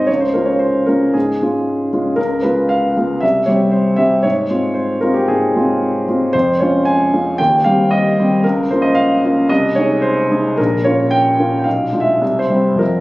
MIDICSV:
0, 0, Header, 1, 2, 480
1, 0, Start_track
1, 0, Tempo, 535714
1, 72, Time_signature, 4, 2, 24, 8
1, 1032, Tempo, 515907
1, 4392, Tempo, 524476
1, 8232, Tempo, 538117
1, 10632, Tempo, 576923
1, 11759, End_track
2, 0, Start_track
2, 0, Title_t, "Grand piano"
2, 0, Program_c, 0, 0
2, 0, Control_c, 0, 64, 127
2, 0, Note_on_c, 0, 44, 39
2, 0, Note_on_c, 0, 56, 32
2, 0, Note_on_c, 0, 60, 31
2, 0, Note_on_c, 0, 63, 33
2, 0, Note_on_c, 0, 72, 54
2, 0, Note_on_c, 0, 73, 50
2, 0, Note_on_c, 0, 75, 53
2, 60, Note_off_c, 0, 73, 0
2, 60, Note_on_c, 0, 73, 55
2, 76, Note_on_c, 0, 37, 38
2, 90, Control_c, 0, 64, 0
2, 91, Note_off_c, 0, 72, 0
2, 94, Note_off_c, 0, 60, 0
2, 95, Note_off_c, 0, 63, 0
2, 97, Note_off_c, 0, 44, 0
2, 99, Note_off_c, 0, 56, 0
2, 99, Note_off_c, 0, 75, 0
2, 183, Note_on_c, 0, 72, 47
2, 185, Note_off_c, 0, 73, 0
2, 209, Control_c, 0, 64, 127
2, 298, Note_on_c, 0, 70, 47
2, 303, Note_off_c, 0, 37, 0
2, 304, Note_off_c, 0, 72, 0
2, 310, Note_on_c, 0, 56, 29
2, 318, Note_on_c, 0, 61, 29
2, 319, Note_on_c, 0, 65, 32
2, 407, Note_on_c, 0, 73, 48
2, 422, Note_off_c, 0, 70, 0
2, 530, Note_on_c, 0, 72, 50
2, 537, Note_off_c, 0, 73, 0
2, 756, Note_off_c, 0, 56, 0
2, 760, Note_off_c, 0, 61, 0
2, 760, Note_off_c, 0, 65, 0
2, 775, Note_on_c, 0, 70, 51
2, 782, Note_off_c, 0, 72, 0
2, 791, Note_on_c, 0, 56, 28
2, 793, Note_on_c, 0, 61, 30
2, 796, Note_on_c, 0, 65, 31
2, 1008, Note_off_c, 0, 56, 0
2, 1009, Note_off_c, 0, 61, 0
2, 1011, Note_off_c, 0, 65, 0
2, 1018, Note_on_c, 0, 68, 52
2, 1024, Note_off_c, 0, 70, 0
2, 1029, Note_on_c, 0, 44, 33
2, 1046, Control_c, 0, 64, 0
2, 1170, Control_c, 0, 64, 127
2, 1267, Note_off_c, 0, 44, 0
2, 1280, Note_on_c, 0, 56, 29
2, 1282, Note_on_c, 0, 61, 30
2, 1290, Note_on_c, 0, 65, 32
2, 1717, Note_off_c, 0, 56, 0
2, 1718, Note_off_c, 0, 61, 0
2, 1722, Note_off_c, 0, 65, 0
2, 1755, Note_on_c, 0, 56, 31
2, 1757, Note_on_c, 0, 61, 30
2, 1764, Note_on_c, 0, 65, 34
2, 1967, Note_off_c, 0, 56, 0
2, 1967, Note_off_c, 0, 61, 0
2, 1970, Note_on_c, 0, 70, 58
2, 1972, Note_off_c, 0, 65, 0
2, 1981, Note_off_c, 0, 68, 0
2, 1984, Note_on_c, 0, 37, 39
2, 2004, Control_c, 0, 64, 0
2, 2175, Control_c, 0, 64, 127
2, 2216, Note_on_c, 0, 71, 44
2, 2222, Note_off_c, 0, 37, 0
2, 2222, Note_off_c, 0, 70, 0
2, 2228, Note_on_c, 0, 56, 29
2, 2231, Note_on_c, 0, 59, 29
2, 2235, Note_on_c, 0, 65, 32
2, 2463, Note_on_c, 0, 77, 56
2, 2472, Note_off_c, 0, 71, 0
2, 2686, Note_off_c, 0, 56, 0
2, 2688, Note_off_c, 0, 59, 0
2, 2690, Note_off_c, 0, 65, 0
2, 2727, Note_on_c, 0, 56, 30
2, 2729, Note_on_c, 0, 59, 30
2, 2734, Note_on_c, 0, 65, 33
2, 2941, Note_off_c, 0, 56, 0
2, 2942, Note_off_c, 0, 59, 0
2, 2942, Note_on_c, 0, 76, 55
2, 2945, Note_off_c, 0, 65, 0
2, 2956, Note_off_c, 0, 77, 0
2, 2964, Note_on_c, 0, 36, 42
2, 2978, Control_c, 0, 64, 0
2, 3131, Control_c, 0, 64, 127
2, 3179, Note_on_c, 0, 73, 53
2, 3189, Note_off_c, 0, 76, 0
2, 3192, Note_off_c, 0, 36, 0
2, 3197, Note_on_c, 0, 55, 32
2, 3201, Note_on_c, 0, 60, 32
2, 3207, Note_on_c, 0, 67, 34
2, 3417, Note_on_c, 0, 72, 49
2, 3425, Note_off_c, 0, 73, 0
2, 3635, Note_off_c, 0, 55, 0
2, 3637, Note_off_c, 0, 60, 0
2, 3640, Note_off_c, 0, 67, 0
2, 3648, Note_on_c, 0, 76, 61
2, 3664, Note_off_c, 0, 72, 0
2, 3665, Note_on_c, 0, 55, 34
2, 3670, Note_on_c, 0, 60, 34
2, 3671, Note_on_c, 0, 67, 36
2, 3884, Note_off_c, 0, 55, 0
2, 3887, Note_off_c, 0, 60, 0
2, 3887, Note_off_c, 0, 67, 0
2, 3893, Note_on_c, 0, 73, 65
2, 3900, Note_off_c, 0, 76, 0
2, 3910, Note_on_c, 0, 44, 45
2, 3926, Control_c, 0, 64, 0
2, 4093, Control_c, 0, 64, 127
2, 4143, Note_off_c, 0, 44, 0
2, 4147, Note_on_c, 0, 56, 34
2, 4149, Note_on_c, 0, 60, 31
2, 4156, Note_on_c, 0, 65, 35
2, 4370, Note_on_c, 0, 72, 51
2, 4383, Note_off_c, 0, 73, 0
2, 4594, Note_off_c, 0, 56, 0
2, 4595, Note_off_c, 0, 60, 0
2, 4598, Note_off_c, 0, 65, 0
2, 4616, Note_on_c, 0, 70, 54
2, 4622, Note_off_c, 0, 72, 0
2, 4634, Note_on_c, 0, 56, 32
2, 4638, Note_on_c, 0, 60, 31
2, 4640, Note_on_c, 0, 65, 36
2, 4739, Note_on_c, 0, 67, 52
2, 4746, Note_off_c, 0, 70, 0
2, 4852, Note_off_c, 0, 56, 0
2, 4854, Note_off_c, 0, 60, 0
2, 4855, Note_off_c, 0, 65, 0
2, 4865, Note_on_c, 0, 68, 59
2, 4868, Note_off_c, 0, 67, 0
2, 4881, Note_on_c, 0, 44, 39
2, 5111, Note_off_c, 0, 44, 0
2, 5121, Note_on_c, 0, 56, 34
2, 5126, Note_on_c, 0, 60, 34
2, 5127, Note_on_c, 0, 65, 38
2, 5557, Note_off_c, 0, 56, 0
2, 5559, Note_off_c, 0, 60, 0
2, 5560, Note_off_c, 0, 65, 0
2, 5600, Note_on_c, 0, 56, 35
2, 5610, Note_on_c, 0, 60, 36
2, 5611, Note_on_c, 0, 65, 40
2, 5815, Note_off_c, 0, 56, 0
2, 5821, Note_off_c, 0, 60, 0
2, 5821, Note_off_c, 0, 65, 0
2, 5825, Note_on_c, 0, 72, 67
2, 5829, Note_off_c, 0, 68, 0
2, 5842, Note_on_c, 0, 41, 46
2, 5851, Control_c, 0, 64, 0
2, 5994, Control_c, 0, 64, 127
2, 6071, Note_on_c, 0, 73, 51
2, 6073, Note_off_c, 0, 72, 0
2, 6074, Note_off_c, 0, 41, 0
2, 6087, Note_on_c, 0, 56, 36
2, 6092, Note_on_c, 0, 61, 36
2, 6093, Note_on_c, 0, 65, 40
2, 6305, Note_on_c, 0, 80, 66
2, 6315, Note_off_c, 0, 73, 0
2, 6523, Note_off_c, 0, 56, 0
2, 6526, Note_off_c, 0, 61, 0
2, 6526, Note_off_c, 0, 65, 0
2, 6559, Note_on_c, 0, 61, 36
2, 6561, Note_on_c, 0, 56, 36
2, 6565, Note_on_c, 0, 65, 38
2, 6769, Note_off_c, 0, 61, 0
2, 6770, Note_off_c, 0, 56, 0
2, 6772, Note_off_c, 0, 65, 0
2, 6783, Note_off_c, 0, 80, 0
2, 6789, Note_on_c, 0, 79, 72
2, 6805, Note_on_c, 0, 39, 49
2, 6808, Control_c, 0, 64, 0
2, 6956, Control_c, 0, 64, 127
2, 7028, Note_on_c, 0, 77, 67
2, 7029, Note_off_c, 0, 79, 0
2, 7030, Note_off_c, 0, 39, 0
2, 7042, Note_on_c, 0, 55, 38
2, 7046, Note_on_c, 0, 60, 39
2, 7053, Note_on_c, 0, 67, 40
2, 7269, Note_on_c, 0, 75, 71
2, 7270, Note_off_c, 0, 77, 0
2, 7483, Note_off_c, 0, 55, 0
2, 7485, Note_off_c, 0, 60, 0
2, 7488, Note_off_c, 0, 67, 0
2, 7532, Note_on_c, 0, 55, 37
2, 7534, Note_on_c, 0, 60, 39
2, 7537, Note_on_c, 0, 67, 41
2, 7741, Note_off_c, 0, 55, 0
2, 7742, Note_off_c, 0, 60, 0
2, 7743, Note_off_c, 0, 67, 0
2, 7753, Note_off_c, 0, 75, 0
2, 7756, Note_on_c, 0, 70, 61
2, 7770, Note_on_c, 0, 37, 50
2, 7771, Control_c, 0, 64, 0
2, 7914, Control_c, 0, 64, 127
2, 7994, Note_off_c, 0, 37, 0
2, 7994, Note_off_c, 0, 70, 0
2, 8000, Note_on_c, 0, 72, 65
2, 8013, Note_on_c, 0, 58, 39
2, 8014, Note_on_c, 0, 61, 37
2, 8021, Note_on_c, 0, 65, 38
2, 8103, Note_on_c, 0, 75, 63
2, 8117, Note_off_c, 0, 72, 0
2, 8222, Note_on_c, 0, 77, 71
2, 8229, Note_off_c, 0, 75, 0
2, 8447, Note_off_c, 0, 58, 0
2, 8447, Note_off_c, 0, 61, 0
2, 8451, Note_off_c, 0, 65, 0
2, 8482, Note_on_c, 0, 58, 38
2, 8486, Note_on_c, 0, 61, 36
2, 8489, Note_on_c, 0, 65, 40
2, 8691, Note_off_c, 0, 58, 0
2, 8694, Note_off_c, 0, 61, 0
2, 8695, Note_off_c, 0, 65, 0
2, 8704, Note_off_c, 0, 77, 0
2, 8709, Note_on_c, 0, 75, 71
2, 8722, Note_on_c, 0, 36, 54
2, 8724, Control_c, 0, 64, 0
2, 8857, Control_c, 0, 64, 127
2, 8940, Note_on_c, 0, 73, 70
2, 8945, Note_off_c, 0, 36, 0
2, 8945, Note_off_c, 0, 75, 0
2, 8956, Note_on_c, 0, 56, 37
2, 8961, Note_on_c, 0, 63, 39
2, 8961, Note_on_c, 0, 68, 43
2, 9177, Note_on_c, 0, 72, 69
2, 9183, Note_off_c, 0, 73, 0
2, 9402, Note_off_c, 0, 56, 0
2, 9404, Note_off_c, 0, 63, 0
2, 9405, Note_off_c, 0, 68, 0
2, 9439, Note_on_c, 0, 56, 39
2, 9443, Note_on_c, 0, 63, 40
2, 9446, Note_on_c, 0, 68, 44
2, 9657, Note_off_c, 0, 56, 0
2, 9660, Note_off_c, 0, 63, 0
2, 9661, Note_off_c, 0, 68, 0
2, 9673, Note_on_c, 0, 70, 68
2, 9674, Note_off_c, 0, 72, 0
2, 9687, Note_on_c, 0, 34, 50
2, 9697, Control_c, 0, 64, 0
2, 9833, Control_c, 0, 64, 127
2, 9912, Note_on_c, 0, 73, 63
2, 9916, Note_off_c, 0, 34, 0
2, 9916, Note_off_c, 0, 70, 0
2, 9925, Note_on_c, 0, 58, 34
2, 9930, Note_on_c, 0, 61, 36
2, 9932, Note_on_c, 0, 65, 39
2, 10148, Note_on_c, 0, 79, 76
2, 10153, Note_off_c, 0, 73, 0
2, 10361, Note_off_c, 0, 58, 0
2, 10363, Note_off_c, 0, 61, 0
2, 10364, Note_off_c, 0, 65, 0
2, 10402, Note_on_c, 0, 58, 33
2, 10402, Note_on_c, 0, 61, 35
2, 10404, Note_on_c, 0, 65, 37
2, 10566, Note_off_c, 0, 79, 0
2, 10580, Note_on_c, 0, 79, 43
2, 10615, Note_off_c, 0, 61, 0
2, 10616, Note_off_c, 0, 58, 0
2, 10617, Note_off_c, 0, 65, 0
2, 10622, Note_on_c, 0, 77, 57
2, 10634, Note_on_c, 0, 35, 45
2, 10638, Note_off_c, 0, 79, 0
2, 10652, Control_c, 0, 64, 0
2, 10792, Control_c, 0, 64, 127
2, 10857, Note_off_c, 0, 35, 0
2, 10862, Note_on_c, 0, 56, 34
2, 10864, Note_on_c, 0, 62, 35
2, 10872, Note_on_c, 0, 65, 36
2, 10925, Note_on_c, 0, 76, 60
2, 10937, Note_off_c, 0, 77, 0
2, 11076, Note_off_c, 0, 56, 0
2, 11077, Note_off_c, 0, 62, 0
2, 11081, Note_off_c, 0, 65, 0
2, 11100, Note_on_c, 0, 36, 46
2, 11117, Control_c, 0, 64, 0
2, 11248, Note_on_c, 0, 72, 58
2, 11253, Note_off_c, 0, 76, 0
2, 11254, Control_c, 0, 64, 127
2, 11336, Note_off_c, 0, 36, 0
2, 11340, Note_on_c, 0, 55, 34
2, 11347, Note_on_c, 0, 60, 34
2, 11349, Note_on_c, 0, 64, 36
2, 11548, Note_on_c, 0, 41, 40
2, 11559, Note_off_c, 0, 60, 0
2, 11561, Note_on_c, 0, 53, 30
2, 11563, Note_off_c, 0, 55, 0
2, 11568, Note_off_c, 0, 64, 0
2, 11572, Note_on_c, 0, 60, 30
2, 11579, Note_on_c, 0, 70, 58
2, 11582, Note_off_c, 0, 72, 0
2, 11582, Note_on_c, 0, 65, 30
2, 11604, Control_c, 0, 64, 0
2, 11744, Control_c, 0, 64, 127
2, 11759, Note_off_c, 0, 41, 0
2, 11759, Note_off_c, 0, 53, 0
2, 11759, Note_off_c, 0, 60, 0
2, 11759, Note_off_c, 0, 65, 0
2, 11759, Note_off_c, 0, 70, 0
2, 11759, End_track
0, 0, End_of_file